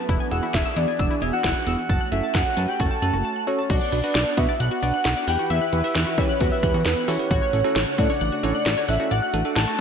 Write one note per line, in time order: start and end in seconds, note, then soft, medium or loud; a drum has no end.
0.00 0.31 B4 loud
0.09 0.19 E1 loud
0.09 1.88 E3 medium
0.09 1.88 B3 medium
0.09 1.88 D4 medium
0.09 0.19 E4 loud
0.09 3.66 F#4 medium
0.09 1.88 G#4 medium
0.09 kick loud
0.09 closed hi-hat medium
0.20 0.30 G#5 medium
0.31 0.41 E1 loud
0.31 0.43 B3 medium
0.31 0.43 E4 medium
0.31 0.43 G#4 medium
0.31 0.56 F#5 loud
0.31 0.41 E6 medium
0.31 closed hi-hat medium
0.43 0.53 E4 medium
0.54 0.64 E1 loud
0.54 0.78 E5 loud
0.54 0.64 G#5 medium
0.54 kick loud
0.54 snare loud
0.54 closed hi-hat medium
0.65 0.75 E6 medium
0.76 0.86 E2 loud
0.76 0.89 B3 medium
0.76 0.89 E4 medium
0.76 0.87 E4 medium
0.76 0.89 G#4 medium
0.76 1.23 D5 loud
0.76 closed hi-hat medium
0.88 0.98 G#5 medium
0.99 1.09 E1 medium
0.99 1.09 E6 loud
0.99 kick loud
0.99 closed hi-hat medium
1.11 1.20 E4 medium
1.22 1.31 E1 loud
1.22 1.34 B3 medium
1.22 1.34 E4 medium
1.22 1.34 G#4 medium
1.22 1.33 E5 loud
1.22 1.32 G#5 medium
1.22 closed hi-hat medium
1.33 1.75 F#5 loud
1.33 1.43 E6 medium
1.44 1.54 E1 loud
1.44 1.54 E4 medium
1.44 kick loud
1.44 snare loud
1.44 closed hi-hat medium
1.67 1.77 E1 loud
1.67 1.79 B3 medium
1.67 1.79 E4 medium
1.67 1.79 G#4 medium
1.67 1.77 E6 medium
1.67 closed hi-hat medium
1.78 2.10 F#5 loud
1.89 1.99 F#1 loud
1.89 3.68 A3 medium
1.89 3.68 C#4 medium
1.89 1.99 A5 loud
1.89 kick loud
1.89 closed hi-hat medium
2.01 2.11 F#6 medium
2.12 2.22 F#1 loud
2.12 2.24 C#4 medium
2.12 2.24 F#4 medium
2.12 2.24 A4 medium
2.12 2.33 E5 loud
2.12 closed hi-hat medium
2.23 2.33 A5 medium
2.34 2.44 F#1 loud
2.34 2.70 F#5 loud
2.34 2.44 F#6 medium
2.34 kick loud
2.34 snare loud
2.34 closed hi-hat medium
2.57 2.67 F#2 loud
2.57 2.69 C#4 medium
2.57 2.69 F#4 medium
2.57 2.69 B4 medium
2.57 2.67 A5 medium
2.57 closed hi-hat medium
2.68 2.81 G5 loud
2.68 2.78 F#6 medium
2.80 2.89 F#1 loud
2.80 2.89 F#4 loud
2.80 3.47 A5 loud
2.80 kick loud
2.80 closed hi-hat medium
2.91 3.01 A5 medium
3.02 3.12 F#1 loud
3.02 3.14 C#4 medium
3.02 3.14 F#4 medium
3.02 3.14 A4 medium
3.02 3.12 F#6 medium
3.02 closed hi-hat medium
3.14 3.23 F#1 loud
3.14 3.23 F#4 medium
3.25 3.35 A5 loud
3.36 3.46 F#6 medium
3.47 3.59 C#4 medium
3.47 3.59 F#4 medium
3.47 3.57 F#4 medium
3.47 3.59 A4 medium
3.47 3.71 C#5 medium
3.59 3.68 A5 medium
3.70 3.80 B1 loud
3.70 5.26 B3 medium
3.70 5.26 D4 medium
3.70 3.80 F#4 loud
3.70 4.39 D5 loud
3.70 9.80 F#5 medium
3.70 kick loud
3.70 closed hi-hat medium
3.70 crash loud
3.81 3.91 D5 medium
3.92 4.02 B1 loud
3.92 3.98 D4 medium
3.92 3.98 F#4 medium
3.92 3.98 B4 medium
3.92 closed hi-hat medium
4.04 4.16 D4 medium
4.04 4.16 F#4 medium
4.04 4.14 F#4 medium
4.04 4.16 B4 medium
4.15 4.25 B1 loud
4.15 4.25 D5 medium
4.15 snare loud
4.15 closed hi-hat medium
4.37 4.47 B2 loud
4.37 4.49 D4 medium
4.37 4.49 F#4 medium
4.37 4.47 F#4 medium
4.37 4.49 B4 medium
4.37 4.60 E5 loud
4.37 kick loud
4.37 closed hi-hat loud
4.49 4.59 D5 medium
4.60 4.70 B1 loud
4.60 5.29 F#5 loud
4.60 4.70 F#6 loud
4.60 closed hi-hat medium
4.71 4.81 F#4 medium
4.83 4.92 B1 loud
4.83 4.95 D4 medium
4.83 4.95 F#4 medium
4.83 4.95 B4 medium
4.83 4.92 D5 medium
4.83 closed hi-hat medium
4.94 5.04 F#6 medium
5.05 5.15 B1 loud
5.05 5.15 F#4 medium
5.05 snare loud
5.05 closed hi-hat medium
5.16 5.26 D5 medium
5.27 5.37 E2 loud
5.27 7.29 E3 medium
5.27 7.29 E4 medium
5.27 5.64 E4 medium
5.27 7.29 G4 medium
5.27 5.64 G4 medium
5.27 7.29 B4 medium
5.27 5.64 B4 medium
5.27 5.52 G5 loud
5.27 5.38 F#6 medium
5.27 open hi-hat medium
5.39 5.49 F#4 medium
5.50 5.60 E2 loud
5.50 5.60 E5 loud
5.50 6.20 E5 loud
5.50 closed hi-hat medium
5.62 5.71 F#6 medium
5.73 5.82 E2 loud
5.73 5.79 E4 medium
5.73 5.79 G4 medium
5.73 5.79 B4 medium
5.73 closed hi-hat medium
5.84 5.96 E4 medium
5.84 5.96 G4 medium
5.84 5.96 B4 medium
5.84 5.94 E5 medium
5.95 6.05 E2 loud
5.95 6.05 F#6 medium
5.95 snare loud
5.95 closed hi-hat medium
6.07 6.17 F#4 medium
6.18 6.28 E3 loud
6.18 6.30 E4 medium
6.18 6.30 G4 medium
6.18 6.30 B4 medium
6.18 6.40 C#5 medium
6.18 6.28 E5 medium
6.18 kick loud
6.18 closed hi-hat loud
6.29 6.39 F#6 medium
6.41 6.50 E2 loud
6.41 6.50 F#4 loud
6.41 6.83 B4 medium
6.41 kick medium
6.41 closed hi-hat medium
6.52 6.62 E5 medium
6.63 6.73 E2 loud
6.63 6.75 E4 medium
6.63 6.75 G4 medium
6.63 6.75 B4 medium
6.63 6.73 F#6 medium
6.63 kick loud
6.63 closed hi-hat medium
6.74 6.84 E2 loud
6.74 6.84 F#4 medium
6.85 6.95 E2 medium
6.85 7.07 B4 loud
6.85 snare loud
6.85 closed hi-hat medium
6.97 7.07 F#6 medium
7.08 7.18 E3 loud
7.08 7.14 E4 medium
7.08 7.18 F#4 medium
7.08 7.14 G4 medium
7.08 7.14 A4 medium
7.08 8.00 C#5 loud
7.08 open hi-hat medium
7.19 7.31 E4 medium
7.19 7.31 G4 medium
7.19 7.31 B4 medium
7.31 7.40 A1 loud
7.31 9.09 C#3 medium
7.31 9.80 A3 medium
7.31 7.41 F#4 loud
7.31 kick loud
7.31 closed hi-hat medium
7.42 7.52 C#5 medium
7.53 7.63 A1 loud
7.53 7.59 C#4 medium
7.53 7.59 E4 medium
7.53 7.59 A4 medium
7.53 closed hi-hat medium
7.64 7.76 C#4 medium
7.64 7.77 E4 medium
7.64 7.74 F#4 medium
7.64 7.76 A4 medium
7.76 7.85 A1 loud
7.76 7.86 C#5 medium
7.76 snare loud
7.76 closed hi-hat medium
7.98 8.08 A2 loud
7.98 8.10 C#4 medium
7.98 8.10 E4 medium
7.98 8.08 F#4 medium
7.98 8.10 A4 medium
7.98 8.90 D5 loud
7.98 kick loud
7.98 closed hi-hat loud
8.10 8.20 C#5 medium
8.21 8.31 A1 loud
8.21 8.31 F#6 loud
8.21 closed hi-hat medium
8.32 8.42 F#4 medium
8.44 8.53 A1 loud
8.44 8.55 C#4 medium
8.44 8.55 E4 medium
8.44 8.55 A4 medium
8.44 8.53 C#5 medium
8.44 closed hi-hat medium
8.55 8.65 F#6 medium
8.66 8.76 A1 loud
8.66 8.76 F#4 medium
8.66 snare loud
8.66 closed hi-hat medium
8.77 8.87 C#5 medium
8.88 8.98 A1 loud
8.88 8.95 C#4 medium
8.88 8.95 E4 medium
8.88 8.95 A4 medium
8.88 9.13 E5 loud
8.88 8.98 F#6 medium
8.88 open hi-hat medium
9.00 9.11 C#4 medium
9.00 9.11 E4 medium
9.00 9.10 F#4 medium
9.00 9.11 A4 medium
9.11 9.21 A1 loud
9.11 9.80 D4 medium
9.11 9.21 D5 loud
9.11 9.56 F#5 loud
9.11 closed hi-hat medium
9.22 9.32 F#6 medium
9.34 9.43 A1 loud
9.34 9.40 D4 medium
9.34 9.40 F#4 medium
9.34 9.40 A4 medium
9.34 closed hi-hat medium
9.45 9.57 D4 medium
9.45 9.57 F#4 medium
9.45 9.57 A4 medium
9.45 9.55 D5 medium
9.56 9.66 A1 loud
9.56 9.80 A5 loud
9.56 9.66 F#6 medium
9.56 snare loud
9.56 closed hi-hat medium
9.68 9.77 F#4 medium